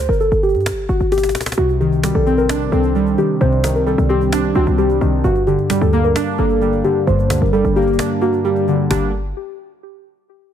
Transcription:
0.09 G1 A#4, cajon slap
0.20 A4, cajon slap
0.32 G1, cajon slap
0.43 G4, cajon slap
0.49 cajon slap
0.55 G2, cajon slap
0.60 cajon slap
0.66 cajon slap
0.72 G1
0.78 cajon slap
0.89 G1 F#4, cajon slap
1.00 G1, cajon slap
1.12 G4, cajon slap
1.18 cajon slap
1.23 cajon slap
1.29 cajon slap
1.35 cajon slap
1.41 cajon slap
1.46 cajon slap
1.52 cajon slap
1.57 C2 C3 F#4
1.69 cajon slap
1.80 D#3 G4, cajon slap
1.92 cajon slap
2.03 G3, cajon slap
2.15 A#1 A4, cajon slap
2.26 C4, cajon slap
2.38 A#4, cajon slap
2.49 D4, cajon slap
2.61 cajon slap
2.72 C2 C4 A4, cajon slap
2.83 cajon slap
2.95 G3, cajon slap
3.07 cajon slap
3.18 D#3 G4, cajon slap
3.41 C2 C3 C5, cajon slap
3.52 cajon slap
3.64 D#3, cajon slap
3.76 A#4, cajon slap
3.86 G3 A4, cajon slap
3.98 C2, cajon slap
4.09 C4 G4, cajon slap
4.21 cajon slap
4.32 D4, cajon slap
4.44 cajon slap
4.55 C2 C4 F#4, cajon slap
4.66 C2, cajon slap
4.78 G3 G4, cajon slap
4.90 cajon slap
5.01 C2 D#3, cajon slap
5.24 G1 G2 F#4, cajon slap
5.36 cajon slap
5.47 D3 G4, cajon slap
5.59 cajon slap
5.70 G3, cajon slap
5.81 D2 A4, cajon slap
5.93 A#3, cajon slap
6.04 A#4, cajon slap
6.16 D4, cajon slap
6.28 cajon slap
6.38 G1 A#3 A4, cajon slap
6.50 cajon slap
6.61 G3, cajon slap
6.73 cajon slap
6.84 D3 G4, cajon slap
7.07 G1 G2 C5, cajon slap
7.19 cajon slap
7.30 D2 D3, cajon slap
7.41 G1 A#4
7.46 cajon slap
7.53 G3 A4, cajon slap
7.65 G1, cajon slap
7.76 A#3 G4, cajon slap
7.82 cajon slap
7.87 cajon slap
7.93 cajon slap
7.99 D4, cajon slap
8.11 cajon slap
8.21 A#3 F#4, cajon slap
8.33 cajon slap
8.44 G3 G4, cajon slap
8.56 cajon slap
8.68 D3, cajon slap
8.90 G1 D3 G3 A#3 D4 G4, cajon bass, cajon slap

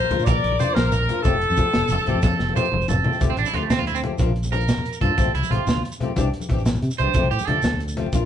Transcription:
Already playing: A#4 C5
0.03 high conga, low conga
0.10 D2 F3 A#3 D4 F4, closed hi-hat, low conga
0.19 A#2, low conga, shekere
0.25 A#4 D5, kick, closed hi-hat, muted conga, high conga, low conga, shekere
0.35 low conga
0.44 A#1, closed hi-hat, low conga
0.52 high conga, low conga
0.59 F3 A#3 D4 C5, closed hi-hat, muted conga, low conga, shekere
0.64 F4
0.74 A#1 A#4, snare, closed hi-hat, high conga, shekere
0.84 low conga
0.92 A#1 A#4, closed hi-hat, muted conga, low conga, shekere
1.00 high conga, low conga
1.09 F3 A#3 D4 F4, closed hi-hat, low conga, shekere
1.23 F1 F3 A3 C4 G4 A4, kick, closed hi-hat, muted conga, high conga, shekere
1.34 low conga
1.41 closed hi-hat
1.50 F2, high conga, shekere
1.57 F3 A3 C4 G4, kick, closed hi-hat, muted conga, low conga, shekere
1.74 F1, snare, closed hi-hat, high conga
1.82 low conga
1.88 F1 A4, closed hi-hat, muted conga, shekere
1.98 high conga, shekere
2.05 A1 F3 A3 C4 G4, closed hi-hat, low conga, shekere
2.15 F2
2.22 A4, kick, snare, muted conga, high conga, low conga, shekere
2.32 low conga
2.39 F1, snare
2.48 high conga
2.54 F3 A3 C4 G4 C5, muted conga, low conga, shekere
2.64 shekere
2.72 F1, mid tom, high conga
2.81 low conga, shekere
2.88 F1 A4, mid tom, muted conga, shekere
2.98 high conga, low conga
3.04 F3 A3 C4 G4, floor tom, low conga
3.13 shekere
3.20 F1 F3 A3 C4 G4, kick, closed hi-hat, muted conga, shekere
3.30 C2 C4, low conga
3.37 A1 D4, closed hi-hat, shekere
3.46 E4, high conga, shekere
3.53 D2 F3 A3 C4 F4 G4, closed hi-hat, low conga
3.63 A3
3.70 D2 C4, snare, closed hi-hat, muted conga, shekere
3.79 F4, high conga, low conga
3.87 E4, closed hi-hat, shekere
3.95 C4, shekere
4.02 F3 A3 C4 G4, closed hi-hat, low conga
4.12 high conga, low conga
4.18 A#1 F3 A#3 D4 F4, kick, closed hi-hat, muted conga, low conga, shekere
4.29 low conga
4.36 closed hi-hat
4.43 high conga, shekere
4.51 F3 A#3 D4 A#4, closed hi-hat, low conga
4.60 shekere
4.68 snare, closed hi-hat, muted conga, low conga, shekere
4.77 high conga, low conga
4.85 closed hi-hat, shekere
4.93 shekere
5.01 G2 F3 A#3 D4 F4 A4, kick, closed hi-hat, low conga
5.09 high conga, low conga
5.18 A1 F3 A3 C4 G4, kick, closed hi-hat, muted conga, shekere
5.26 A1, low conga
5.35 C2 E4, closed hi-hat, shekere
5.43 high conga, shekere
5.50 A1 F3 A3 C4 F4 G4, closed hi-hat, low conga
5.67 D2, snare, closed hi-hat, muted conga, shekere
5.76 high conga, low conga
5.85 closed hi-hat, shekere
5.92 shekere
6.00 F3 A3 C4 G4, closed hi-hat, low conga
6.08 high conga, low conga
6.16 C2 E3 C4 D4 G4, kick, closed hi-hat, muted conga, low conga, shekere
6.25 low conga
6.33 closed hi-hat
6.40 high conga, shekere
6.49 A1 E3 C4 D4, kick, closed hi-hat, low conga
6.53 G4
6.58 shekere
6.66 snare, closed hi-hat, muted conga, low conga, shekere
6.75 high conga, low conga, shekere
6.82 C3, closed hi-hat, shekere
6.91 shekere
6.98 C2 E3 C4 D4 C5, closed hi-hat, low conga
7.03 G4, high conga, low conga
7.14 F2 F3 A3 C4 G4, kick, closed hi-hat, muted conga, shekere
7.22 C2, low conga
7.31 A2 G4, closed hi-hat, shekere
7.39 high conga, shekere
7.47 D3 F3 A3 C4 G4 A4, closed hi-hat, low conga
7.62 D2, snare, closed hi-hat, muted conga, shekere
7.72 high conga, low conga
7.80 closed hi-hat, shekere
7.88 shekere
7.97 F3 A3 C4 G4, closed hi-hat, low conga
8.06 high conga, low conga
8.13 A#1 A#3 D4 F4, kick, closed hi-hat, muted conga, low conga, shekere

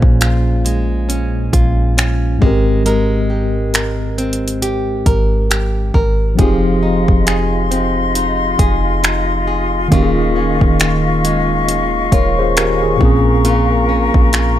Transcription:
Already playing: A#2 A#3 C#4 F4 G#4 C5
0.02 A#1, kick
0.21 F4, finger snap, closed hi-hat
0.65 G#3, closed hi-hat
1.09 C#4, closed hi-hat
1.53 A#1 F4, kick, closed hi-hat
1.97 C#4, finger snap, closed hi-hat
2.38 G#1 G#2 G#3, kick
2.42 C4 G4
2.46 A#4
2.86 G#3 A#4, closed hi-hat
3.30 G4
3.74 A#4, finger snap, closed hi-hat
4.18 C4, closed hi-hat
4.33 closed hi-hat
4.48 closed hi-hat
4.62 G4, closed hi-hat
5.06 G#1 A#4, kick, closed hi-hat
5.50 G4, finger snap, closed hi-hat
5.94 G#1 A#4, kick
6.35 F1 F3 C4 F4 G#4 D#5 F5 C6, kick, closed hi-hat
6.39 D#4 G4 G#4
6.83 D#4
7.08 F1, kick
7.27 G#4, finger snap, closed hi-hat
7.71 C4, closed hi-hat
8.15 D#4, closed hi-hat
8.59 F1 G#4, kick, closed hi-hat
9.03 D#4, finger snap, closed hi-hat
9.47 G#4
9.88 D#1 D#3 A#3 C#4 D#5 C#6, kick, closed hi-hat
9.92 F4 G4
10.03 G#4
10.36 C#4
10.61 D#1, kick
10.80 F4, finger snap, closed hi-hat
11.24 G#3, closed hi-hat
11.68 C#4, closed hi-hat
12.12 D#1 F4 A#4 C#5, kick, closed hi-hat
12.39 G#4 C5
12.56 C#4 G4 A#4, finger snap, closed hi-hat
12.83 F4 G#4
12.97 A#1 A#2 A#3 A#4 A#5, kick
13.01 C4 C#4 G#4
13.45 A#2 F4, closed hi-hat
13.89 C#4
14.14 A#1, kick
14.33 F4, finger snap, closed hi-hat

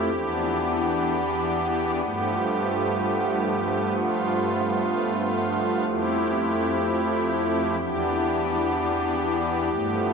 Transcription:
Already playing: G4
0.11 E2 E3 B3 D4
2.03 G2 F3 A3 G4
3.95 F4
5.87 F2 E4 G4
7.79 E2 E3 B3 D4 G4
9.71 G2 F3 A3 B3

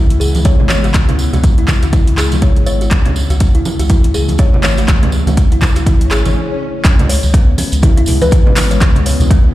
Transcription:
Already playing: C#2 C#3 G#3 B3 E4
0.10 closed hi-hat, muted conga
0.20 C#2 G#4, tambourine
0.35 closed hi-hat, tambourine, high conga
0.45 C#5, kick, closed hi-hat, tambourine
0.60 G#1, muted conga, low conga
0.69 C#5, clap, tambourine, high conga
0.84 F#4, closed hi-hat, tambourine
0.94 C#2, kick, clap, closed hi-hat, tambourine, muted conga, high conga
1.09 C#4, closed hi-hat, low conga
1.19 tambourine
1.33 C#2 F#4, closed hi-hat, tambourine, muted conga, high conga, low conga
1.44 kick, closed hi-hat, tambourine
1.58 E4, closed hi-hat
1.68 kick, clap, tambourine, muted conga, high conga
1.83 C#2 F#4, closed hi-hat, tambourine
1.93 E4, kick, closed hi-hat, tambourine, high conga
2.07 closed hi-hat, muted conga
2.17 C#2 G#4, clap, tambourine
2.32 closed hi-hat, tambourine, high conga, low conga
2.42 C#5, kick, closed hi-hat, high conga
2.56 G#1, closed hi-hat, muted conga
2.66 C#5, tambourine
2.81 F#4, closed hi-hat, tambourine
2.91 C#2 C#3 E3 A3, kick, clap, closed hi-hat, muted conga, high conga
3.06 C#4, closed hi-hat, low conga
3.16 tambourine
3.30 C#2 F#4, closed hi-hat, tambourine, muted conga
3.40 kick, closed hi-hat, tambourine
3.55 E4, closed hi-hat
3.65 tambourine, muted conga, high conga
3.79 C#2 F#4, closed hi-hat, tambourine
3.90 E4, kick, closed hi-hat, tambourine, high conga
4.04 closed hi-hat, muted conga
4.14 C#2 G#4, tambourine
4.28 closed hi-hat, tambourine, high conga
4.38 C#5, kick, closed hi-hat, tambourine
4.54 G#1, muted conga, low conga
4.63 C#5, clap, tambourine, high conga
4.77 F#4, closed hi-hat, tambourine
4.88 C#2, kick, clap, closed hi-hat, tambourine, muted conga, high conga
5.03 C#4, closed hi-hat, low conga
5.12 tambourine
5.27 C#2 F#4, closed hi-hat, tambourine, muted conga, high conga, low conga
5.37 kick, closed hi-hat, tambourine
5.52 E4, closed hi-hat
5.61 kick, clap, tambourine, muted conga, high conga
5.76 C#2 F#4, closed hi-hat, tambourine
5.86 E4, kick, closed hi-hat, tambourine, swell, high conga
6.01 closed hi-hat, muted conga
6.10 G#1 G#4, clap, tambourine
6.25 closed hi-hat, tambourine, high conga, low conga
6.85 C#2 C#3 G#3 B3 C#4 E4, kick, clap, closed hi-hat, tambourine, muted conga, high conga
6.99 closed hi-hat, low conga
7.09 C#5, open hi-hat, tambourine
7.23 C#2, tambourine, muted conga
7.34 B3, kick, closed hi-hat, tambourine
7.58 C#4, open hi-hat, tambourine, muted conga, high conga
7.72 C#2, closed hi-hat, tambourine
7.82 E4, kick, closed hi-hat, tambourine, high conga
7.97 E4, closed hi-hat, muted conga
8.06 C#2, open hi-hat, tambourine, low conga
8.21 B4, closed hi-hat, tambourine, high conga
8.31 kick, closed hi-hat, tambourine
8.46 G#1 C#4, muted conga, low conga
8.56 clap, open hi-hat, tambourine, high conga
8.71 C#5, closed hi-hat, tambourine
8.80 C#2 C#4, kick, clap, closed hi-hat, tambourine, muted conga, high conga
8.95 closed hi-hat, low conga
9.06 C#5, open hi-hat, tambourine
9.20 C#2, closed hi-hat, tambourine, muted conga, high conga, low conga
9.31 B3, kick, closed hi-hat

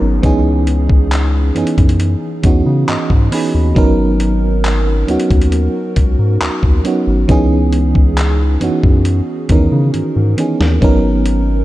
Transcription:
Already playing: F#3 B3 C#4 D#4 G#4 A#4, downlifter
0.02 G#1
0.22 C#2 E3 B3 C#4 D#4 G#4, kick, closed hi-hat
0.67 closed hi-hat
0.90 kick
1.12 clap, closed hi-hat
1.55 F#2 E3 B3 C#4 D#4 G#4, closed hi-hat
1.67 closed hi-hat
1.78 F#2, kick, closed hi-hat
1.89 closed hi-hat
2.00 closed hi-hat
2.43 E2 E3 B3 C#4 D#4 F#4, kick, closed hi-hat
2.66 C#3
2.88 G#2 D#5, clap, closed hi-hat
3.10 G#2, kick
3.31 E3 B3 C#4 D#4 G#4 B5, open hi-hat
3.55 D#2
3.75 G#1 F#3 B3 C#4 D#4 A#4, kick, closed hi-hat
4.20 closed hi-hat
4.65 clap, closed hi-hat
5.07 D#2 F#3 B3 C#4 D#4 F#4, closed hi-hat
5.20 closed hi-hat
5.31 D#2, kick, closed hi-hat
5.41 closed hi-hat
5.52 closed hi-hat
5.96 C#2, kick, closed hi-hat
6.19 G#2
6.41 D#2, clap, closed hi-hat
6.63 D#2, kick
6.84 F#3 B3 C#4 D#4 F#4, closed hi-hat
7.07 G#1
7.28 C#2 E3 B3 C#4 D#4 G#4, kick, closed hi-hat
7.73 closed hi-hat
7.95 kick
8.18 clap, closed hi-hat
8.60 F#2 E3 B3 C#4 D#4 F#4, closed hi-hat
8.84 F#2, kick
9.05 closed hi-hat
9.49 E2 D#3 B3 C#4 D#4 A#4, kick, closed hi-hat
9.55 E3
9.72 C#3
9.94 G#2, closed hi-hat
10.16 G#2
10.37 E3 B3 C#4 D#4 G#4, closed hi-hat
10.60 D#2, snare
10.81 G#1 F#3 B3 C#4 D#4 A#4, kick, closed hi-hat
11.26 closed hi-hat

